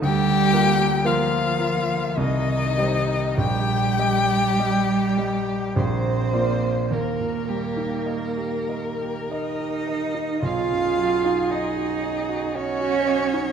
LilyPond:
<<
  \new Staff \with { instrumentName = "Violin" } { \time 3/4 \key ees \major \tempo 4 = 53 g'4 f'4 ees'4 | g'2 c''4 | bes'2 ees''4 | f''4 dis''4 des''4 | }
  \new Staff \with { instrumentName = "Violin" } { \time 3/4 \key ees \major g''4 f''4 ees''4 | g''2 r4 | bes'8 g'8 bes'2 | aes'2 fis'4 | }
  \new Staff \with { instrumentName = "Grand piano" } { \time 3/4 \key ees \major d,8 <bes f' bes'>8 <bes f' bes'>8 <bes f' bes'>8 c,8 <g g' c''>8 | bes,,8 <g g' ees''>8 <g g' ees''>8 <g g' ees''>8 bes,,8 <bes f' d''>8 | ees,16 bes,16 g16 ees'16 ees''16 g'16 ees''16 g'16 ees''16 g'16 ees''16 ees'16 | b,,16 fis,16 fis16 dis'16 dis''16 fis'16 dis''16 fis'16 dis''16 fis'16 dis''16 dis'16 | }
  \new Staff \with { instrumentName = "Cello" } { \time 3/4 \key ees \major g4 f4 ees4 | g2 c'4 | bes2 ees'4 | f'4 dis'4 des'4 | }
>>